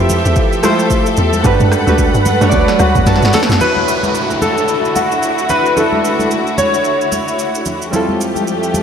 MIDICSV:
0, 0, Header, 1, 7, 480
1, 0, Start_track
1, 0, Key_signature, 2, "major"
1, 0, Tempo, 540541
1, 1284, Time_signature, 4, 2, 24, 8
1, 7839, End_track
2, 0, Start_track
2, 0, Title_t, "Grand piano"
2, 0, Program_c, 0, 0
2, 2484, Note_on_c, 0, 66, 84
2, 2966, Note_on_c, 0, 69, 101
2, 2978, Note_off_c, 0, 66, 0
2, 3020, Note_off_c, 0, 69, 0
2, 3205, Note_on_c, 0, 71, 100
2, 3651, Note_off_c, 0, 71, 0
2, 3923, Note_on_c, 0, 69, 97
2, 4405, Note_on_c, 0, 66, 86
2, 4418, Note_off_c, 0, 69, 0
2, 4884, Note_on_c, 0, 71, 99
2, 4899, Note_off_c, 0, 66, 0
2, 5125, Note_on_c, 0, 69, 90
2, 5131, Note_off_c, 0, 71, 0
2, 5571, Note_off_c, 0, 69, 0
2, 5843, Note_on_c, 0, 73, 103
2, 6768, Note_off_c, 0, 73, 0
2, 7839, End_track
3, 0, Start_track
3, 0, Title_t, "Synth keys"
3, 0, Program_c, 1, 88
3, 0, Control_c, 1, 64, 127
3, 0, Note_on_c, 1, 57, 86
3, 0, Note_on_c, 1, 64, 80
3, 0, Note_on_c, 1, 65, 81
3, 0, Note_on_c, 1, 67, 83
3, 0, Note_on_c, 1, 71, 77
3, 0, Note_on_c, 1, 72, 94
3, 405, Note_off_c, 1, 57, 0
3, 408, Note_off_c, 1, 64, 0
3, 411, Note_off_c, 1, 65, 0
3, 414, Note_off_c, 1, 67, 0
3, 445, Note_off_c, 1, 72, 0
3, 557, Note_on_c, 1, 57, 92
3, 563, Note_on_c, 1, 64, 81
3, 568, Note_on_c, 1, 65, 86
3, 574, Note_on_c, 1, 67, 82
3, 580, Note_on_c, 1, 72, 103
3, 1152, Note_off_c, 1, 57, 0
3, 1155, Note_off_c, 1, 64, 0
3, 1157, Note_off_c, 1, 65, 0
3, 1161, Note_off_c, 1, 67, 0
3, 1163, Note_off_c, 1, 72, 0
3, 1275, Note_on_c, 1, 57, 86
3, 1282, Note_on_c, 1, 62, 73
3, 1287, Note_on_c, 1, 66, 73
3, 1293, Note_on_c, 1, 67, 74
3, 1295, Control_c, 1, 64, 0
3, 1298, Note_off_c, 1, 71, 0
3, 1298, Note_on_c, 1, 71, 95
3, 1460, Control_c, 1, 64, 127
3, 1575, Note_off_c, 1, 57, 0
3, 1579, Note_off_c, 1, 62, 0
3, 1582, Note_off_c, 1, 66, 0
3, 1585, Note_off_c, 1, 67, 0
3, 1587, Note_off_c, 1, 71, 0
3, 1659, Note_on_c, 1, 57, 82
3, 1663, Note_on_c, 1, 62, 79
3, 1668, Note_on_c, 1, 66, 79
3, 1674, Note_on_c, 1, 67, 81
3, 1680, Note_on_c, 1, 71, 96
3, 2030, Note_off_c, 1, 57, 0
3, 2032, Note_off_c, 1, 62, 0
3, 2035, Note_off_c, 1, 66, 0
3, 2038, Note_off_c, 1, 67, 0
3, 2040, Note_off_c, 1, 71, 0
3, 2137, Note_on_c, 1, 57, 91
3, 2142, Note_on_c, 1, 62, 80
3, 2147, Note_on_c, 1, 66, 82
3, 2153, Note_on_c, 1, 55, 77
3, 2158, Note_on_c, 1, 73, 77
3, 2199, Note_off_c, 1, 73, 0
3, 2216, Note_on_c, 1, 74, 98
3, 2728, Note_on_c, 1, 81, 78
3, 2901, Note_off_c, 1, 57, 0
3, 2903, Note_off_c, 1, 62, 0
3, 2906, Note_off_c, 1, 66, 0
3, 2908, Note_off_c, 1, 55, 0
3, 2940, Note_off_c, 1, 74, 0
3, 3173, Note_off_c, 1, 81, 0
3, 3185, Note_on_c, 1, 57, 58
3, 3196, Note_on_c, 1, 62, 53
3, 3208, Note_on_c, 1, 64, 55
3, 3215, Control_c, 1, 64, 0
3, 3219, Note_on_c, 1, 66, 55
3, 3229, Note_on_c, 1, 73, 68
3, 3346, Control_c, 1, 64, 127
3, 5079, Note_off_c, 1, 57, 0
3, 5085, Note_off_c, 1, 62, 0
3, 5090, Note_off_c, 1, 64, 0
3, 5096, Note_off_c, 1, 66, 0
3, 5101, Note_off_c, 1, 73, 0
3, 5105, Note_on_c, 1, 57, 62
3, 5117, Note_on_c, 1, 62, 52
3, 5127, Note_on_c, 1, 64, 58
3, 5139, Note_on_c, 1, 66, 54
3, 5149, Note_on_c, 1, 76, 67
3, 6999, Note_off_c, 1, 57, 0
3, 7005, Note_off_c, 1, 62, 0
3, 7010, Note_off_c, 1, 64, 0
3, 7016, Note_off_c, 1, 66, 0
3, 7021, Note_off_c, 1, 76, 0
3, 7025, Note_on_c, 1, 55, 76
3, 7036, Note_on_c, 1, 60, 68
3, 7047, Note_on_c, 1, 64, 66
3, 7056, Control_c, 1, 64, 0
3, 7057, Note_on_c, 1, 65, 66
3, 7068, Note_on_c, 1, 69, 80
3, 7217, Control_c, 1, 64, 127
3, 7839, Note_off_c, 1, 55, 0
3, 7839, Note_off_c, 1, 60, 0
3, 7839, Note_off_c, 1, 64, 0
3, 7839, Note_off_c, 1, 65, 0
3, 7839, Note_off_c, 1, 69, 0
3, 7839, End_track
4, 0, Start_track
4, 0, Title_t, "String section"
4, 0, Program_c, 2, 48
4, 0, Note_on_c, 2, 53, 78
4, 0, Note_on_c, 2, 67, 72
4, 0, Note_on_c, 2, 69, 89
4, 0, Note_on_c, 2, 76, 69
4, 1247, Note_off_c, 2, 76, 0
4, 1265, Note_off_c, 2, 53, 0
4, 1265, Note_off_c, 2, 67, 0
4, 1285, Note_on_c, 2, 71, 86
4, 1285, Note_on_c, 2, 78, 73
4, 1286, Note_on_c, 2, 55, 80
4, 3168, Note_off_c, 2, 69, 0
4, 3185, Note_off_c, 2, 78, 0
4, 3186, Note_off_c, 2, 55, 0
4, 3186, Note_off_c, 2, 71, 0
4, 3203, Note_on_c, 2, 38, 72
4, 3203, Note_on_c, 2, 50, 66
4, 3204, Note_on_c, 2, 66, 81
4, 3205, Note_on_c, 2, 64, 70
4, 7008, Note_off_c, 2, 38, 0
4, 7008, Note_off_c, 2, 50, 0
4, 7009, Note_off_c, 2, 64, 0
4, 7009, Note_off_c, 2, 66, 0
4, 7044, Note_on_c, 2, 57, 71
4, 7044, Note_on_c, 2, 67, 82
4, 7045, Note_on_c, 2, 41, 77
4, 7045, Note_on_c, 2, 53, 69
4, 7839, Note_off_c, 2, 41, 0
4, 7839, Note_off_c, 2, 53, 0
4, 7839, Note_off_c, 2, 57, 0
4, 7839, Note_off_c, 2, 67, 0
4, 7839, End_track
5, 0, Start_track
5, 0, Title_t, "Log drum bass"
5, 0, Program_c, 3, 39
5, 0, Note_on_c, 3, 41, 88
5, 213, Note_off_c, 3, 41, 0
5, 226, Note_on_c, 3, 40, 90
5, 321, Note_off_c, 3, 40, 0
5, 1046, Note_on_c, 3, 40, 92
5, 1274, Note_off_c, 3, 40, 0
5, 1284, Note_on_c, 3, 43, 106
5, 1645, Note_off_c, 3, 43, 0
5, 1664, Note_on_c, 3, 38, 94
5, 1892, Note_off_c, 3, 38, 0
5, 1904, Note_on_c, 3, 43, 94
5, 2132, Note_off_c, 3, 43, 0
5, 2144, Note_on_c, 3, 42, 94
5, 2237, Note_off_c, 3, 42, 0
5, 2242, Note_on_c, 3, 38, 95
5, 2376, Note_off_c, 3, 38, 0
5, 2485, Note_on_c, 3, 38, 107
5, 2617, Note_off_c, 3, 38, 0
5, 2624, Note_on_c, 3, 40, 90
5, 2716, Note_off_c, 3, 40, 0
5, 2721, Note_on_c, 3, 42, 95
5, 2855, Note_off_c, 3, 42, 0
5, 2864, Note_on_c, 3, 43, 96
5, 2960, Note_off_c, 3, 43, 0
5, 3103, Note_on_c, 3, 42, 93
5, 3199, Note_off_c, 3, 42, 0
5, 7839, End_track
6, 0, Start_track
6, 0, Title_t, "Downlifter"
6, 0, Program_c, 4, 103
6, 3204, Note_on_c, 4, 60, 79
6, 7044, Note_off_c, 4, 60, 0
6, 7839, End_track
7, 0, Start_track
7, 0, Title_t, "Drums"
7, 85, Note_on_c, 9, 63, 68
7, 85, Note_on_c, 9, 64, 70
7, 85, Note_on_c, 9, 82, 103
7, 173, Note_off_c, 9, 82, 0
7, 174, Note_off_c, 9, 63, 0
7, 174, Note_off_c, 9, 64, 0
7, 227, Note_on_c, 9, 82, 57
7, 315, Note_off_c, 9, 82, 0
7, 319, Note_on_c, 9, 82, 78
7, 324, Note_on_c, 9, 36, 117
7, 407, Note_off_c, 9, 82, 0
7, 412, Note_off_c, 9, 36, 0
7, 468, Note_on_c, 9, 82, 45
7, 556, Note_off_c, 9, 82, 0
7, 564, Note_on_c, 9, 37, 94
7, 564, Note_on_c, 9, 82, 96
7, 567, Note_on_c, 9, 63, 72
7, 653, Note_off_c, 9, 37, 0
7, 653, Note_off_c, 9, 82, 0
7, 655, Note_off_c, 9, 63, 0
7, 704, Note_on_c, 9, 82, 57
7, 793, Note_off_c, 9, 82, 0
7, 802, Note_on_c, 9, 82, 86
7, 803, Note_on_c, 9, 36, 86
7, 891, Note_off_c, 9, 82, 0
7, 892, Note_off_c, 9, 36, 0
7, 943, Note_on_c, 9, 82, 57
7, 1032, Note_off_c, 9, 82, 0
7, 1037, Note_on_c, 9, 82, 84
7, 1044, Note_on_c, 9, 64, 69
7, 1126, Note_off_c, 9, 82, 0
7, 1133, Note_off_c, 9, 64, 0
7, 1183, Note_on_c, 9, 82, 56
7, 1185, Note_on_c, 9, 63, 59
7, 1271, Note_off_c, 9, 82, 0
7, 1274, Note_off_c, 9, 63, 0
7, 1283, Note_on_c, 9, 82, 89
7, 1284, Note_on_c, 9, 36, 118
7, 1286, Note_on_c, 9, 64, 80
7, 1371, Note_off_c, 9, 82, 0
7, 1372, Note_off_c, 9, 36, 0
7, 1375, Note_off_c, 9, 64, 0
7, 1422, Note_on_c, 9, 82, 50
7, 1423, Note_on_c, 9, 45, 92
7, 1426, Note_on_c, 9, 63, 71
7, 1510, Note_off_c, 9, 82, 0
7, 1512, Note_off_c, 9, 45, 0
7, 1515, Note_off_c, 9, 63, 0
7, 1524, Note_on_c, 9, 37, 97
7, 1529, Note_on_c, 9, 82, 98
7, 1613, Note_off_c, 9, 37, 0
7, 1618, Note_off_c, 9, 82, 0
7, 1664, Note_on_c, 9, 63, 65
7, 1664, Note_on_c, 9, 82, 50
7, 1753, Note_off_c, 9, 63, 0
7, 1753, Note_off_c, 9, 82, 0
7, 1762, Note_on_c, 9, 82, 81
7, 1763, Note_on_c, 9, 36, 97
7, 1851, Note_off_c, 9, 36, 0
7, 1851, Note_off_c, 9, 82, 0
7, 1903, Note_on_c, 9, 82, 47
7, 1992, Note_off_c, 9, 82, 0
7, 2004, Note_on_c, 9, 82, 99
7, 2006, Note_on_c, 9, 63, 67
7, 2006, Note_on_c, 9, 64, 68
7, 2092, Note_off_c, 9, 82, 0
7, 2095, Note_off_c, 9, 63, 0
7, 2095, Note_off_c, 9, 64, 0
7, 2144, Note_on_c, 9, 82, 60
7, 2233, Note_off_c, 9, 82, 0
7, 2235, Note_on_c, 9, 82, 75
7, 2242, Note_on_c, 9, 36, 119
7, 2244, Note_on_c, 9, 64, 69
7, 2324, Note_off_c, 9, 82, 0
7, 2331, Note_off_c, 9, 36, 0
7, 2333, Note_off_c, 9, 64, 0
7, 2382, Note_on_c, 9, 38, 61
7, 2383, Note_on_c, 9, 82, 44
7, 2471, Note_off_c, 9, 38, 0
7, 2472, Note_off_c, 9, 82, 0
7, 2482, Note_on_c, 9, 37, 95
7, 2482, Note_on_c, 9, 82, 96
7, 2486, Note_on_c, 9, 63, 74
7, 2570, Note_off_c, 9, 82, 0
7, 2571, Note_off_c, 9, 37, 0
7, 2575, Note_off_c, 9, 63, 0
7, 2623, Note_on_c, 9, 82, 58
7, 2624, Note_on_c, 9, 36, 94
7, 2625, Note_on_c, 9, 45, 61
7, 2712, Note_off_c, 9, 82, 0
7, 2713, Note_off_c, 9, 36, 0
7, 2714, Note_off_c, 9, 45, 0
7, 2721, Note_on_c, 9, 82, 84
7, 2722, Note_on_c, 9, 36, 81
7, 2723, Note_on_c, 9, 38, 60
7, 2803, Note_off_c, 9, 38, 0
7, 2803, Note_on_c, 9, 38, 60
7, 2810, Note_off_c, 9, 82, 0
7, 2811, Note_off_c, 9, 36, 0
7, 2862, Note_on_c, 9, 82, 57
7, 2884, Note_off_c, 9, 38, 0
7, 2884, Note_on_c, 9, 38, 84
7, 2951, Note_off_c, 9, 82, 0
7, 2957, Note_on_c, 9, 46, 70
7, 2957, Note_on_c, 9, 82, 84
7, 2963, Note_off_c, 9, 38, 0
7, 2963, Note_on_c, 9, 38, 79
7, 2963, Note_on_c, 9, 64, 65
7, 3043, Note_off_c, 9, 38, 0
7, 3043, Note_on_c, 9, 38, 102
7, 3046, Note_off_c, 9, 46, 0
7, 3046, Note_off_c, 9, 82, 0
7, 3052, Note_off_c, 9, 64, 0
7, 3103, Note_on_c, 9, 63, 58
7, 3103, Note_on_c, 9, 82, 52
7, 3123, Note_off_c, 9, 38, 0
7, 3123, Note_on_c, 9, 38, 98
7, 3192, Note_off_c, 9, 63, 0
7, 3192, Note_off_c, 9, 82, 0
7, 3202, Note_on_c, 9, 82, 81
7, 3203, Note_on_c, 9, 64, 73
7, 3212, Note_off_c, 9, 38, 0
7, 3291, Note_off_c, 9, 82, 0
7, 3292, Note_off_c, 9, 64, 0
7, 3344, Note_on_c, 9, 63, 64
7, 3433, Note_off_c, 9, 63, 0
7, 3449, Note_on_c, 9, 82, 89
7, 3537, Note_off_c, 9, 82, 0
7, 3580, Note_on_c, 9, 63, 60
7, 3584, Note_on_c, 9, 82, 47
7, 3669, Note_off_c, 9, 63, 0
7, 3673, Note_off_c, 9, 82, 0
7, 3682, Note_on_c, 9, 82, 74
7, 3771, Note_off_c, 9, 82, 0
7, 3824, Note_on_c, 9, 82, 46
7, 3912, Note_off_c, 9, 82, 0
7, 3923, Note_on_c, 9, 63, 64
7, 3923, Note_on_c, 9, 64, 63
7, 3924, Note_on_c, 9, 82, 91
7, 4012, Note_off_c, 9, 63, 0
7, 4012, Note_off_c, 9, 64, 0
7, 4013, Note_off_c, 9, 82, 0
7, 4065, Note_on_c, 9, 82, 53
7, 4153, Note_off_c, 9, 82, 0
7, 4157, Note_on_c, 9, 82, 72
7, 4246, Note_off_c, 9, 82, 0
7, 4305, Note_on_c, 9, 82, 38
7, 4394, Note_off_c, 9, 82, 0
7, 4403, Note_on_c, 9, 82, 90
7, 4404, Note_on_c, 9, 63, 67
7, 4492, Note_off_c, 9, 82, 0
7, 4493, Note_off_c, 9, 63, 0
7, 4544, Note_on_c, 9, 82, 53
7, 4633, Note_off_c, 9, 82, 0
7, 4642, Note_on_c, 9, 82, 78
7, 4731, Note_off_c, 9, 82, 0
7, 4781, Note_on_c, 9, 82, 55
7, 4870, Note_off_c, 9, 82, 0
7, 4877, Note_on_c, 9, 82, 78
7, 4880, Note_on_c, 9, 64, 61
7, 4966, Note_off_c, 9, 82, 0
7, 4969, Note_off_c, 9, 64, 0
7, 5024, Note_on_c, 9, 82, 51
7, 5113, Note_off_c, 9, 82, 0
7, 5121, Note_on_c, 9, 64, 73
7, 5125, Note_on_c, 9, 82, 80
7, 5210, Note_off_c, 9, 64, 0
7, 5213, Note_off_c, 9, 82, 0
7, 5262, Note_on_c, 9, 63, 64
7, 5351, Note_off_c, 9, 63, 0
7, 5370, Note_on_c, 9, 82, 91
7, 5459, Note_off_c, 9, 82, 0
7, 5500, Note_on_c, 9, 63, 61
7, 5506, Note_on_c, 9, 82, 45
7, 5588, Note_off_c, 9, 63, 0
7, 5595, Note_off_c, 9, 82, 0
7, 5604, Note_on_c, 9, 82, 75
7, 5693, Note_off_c, 9, 82, 0
7, 5745, Note_on_c, 9, 82, 45
7, 5834, Note_off_c, 9, 82, 0
7, 5843, Note_on_c, 9, 63, 62
7, 5843, Note_on_c, 9, 64, 61
7, 5845, Note_on_c, 9, 82, 98
7, 5932, Note_off_c, 9, 63, 0
7, 5932, Note_off_c, 9, 64, 0
7, 5934, Note_off_c, 9, 82, 0
7, 5986, Note_on_c, 9, 82, 54
7, 6075, Note_off_c, 9, 82, 0
7, 6078, Note_on_c, 9, 82, 70
7, 6167, Note_off_c, 9, 82, 0
7, 6227, Note_on_c, 9, 82, 39
7, 6316, Note_off_c, 9, 82, 0
7, 6324, Note_on_c, 9, 63, 67
7, 6324, Note_on_c, 9, 82, 95
7, 6413, Note_off_c, 9, 63, 0
7, 6413, Note_off_c, 9, 82, 0
7, 6465, Note_on_c, 9, 82, 54
7, 6554, Note_off_c, 9, 82, 0
7, 6562, Note_on_c, 9, 82, 77
7, 6651, Note_off_c, 9, 82, 0
7, 6703, Note_on_c, 9, 82, 57
7, 6792, Note_off_c, 9, 82, 0
7, 6798, Note_on_c, 9, 82, 80
7, 6802, Note_on_c, 9, 64, 61
7, 6887, Note_off_c, 9, 82, 0
7, 6891, Note_off_c, 9, 64, 0
7, 6944, Note_on_c, 9, 82, 49
7, 7033, Note_off_c, 9, 82, 0
7, 7043, Note_on_c, 9, 64, 73
7, 7044, Note_on_c, 9, 82, 84
7, 7132, Note_off_c, 9, 64, 0
7, 7133, Note_off_c, 9, 82, 0
7, 7183, Note_on_c, 9, 63, 67
7, 7271, Note_off_c, 9, 63, 0
7, 7289, Note_on_c, 9, 82, 95
7, 7378, Note_off_c, 9, 82, 0
7, 7420, Note_on_c, 9, 63, 64
7, 7425, Note_on_c, 9, 82, 47
7, 7509, Note_off_c, 9, 63, 0
7, 7514, Note_off_c, 9, 82, 0
7, 7525, Note_on_c, 9, 82, 70
7, 7614, Note_off_c, 9, 82, 0
7, 7665, Note_on_c, 9, 82, 46
7, 7754, Note_off_c, 9, 82, 0
7, 7763, Note_on_c, 9, 63, 63
7, 7763, Note_on_c, 9, 64, 65
7, 7766, Note_on_c, 9, 82, 96
7, 7839, Note_off_c, 9, 63, 0
7, 7839, Note_off_c, 9, 64, 0
7, 7839, Note_off_c, 9, 82, 0
7, 7839, End_track
0, 0, End_of_file